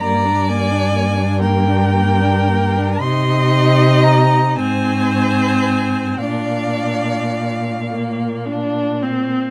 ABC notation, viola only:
X:1
M:6/8
L:1/16
Q:3/8=37
K:Bbmix
V:1 name="Viola"
B, D B, D B, D B, D B, D B, D | E6 C6 | D6 B,2 D2 C2 |]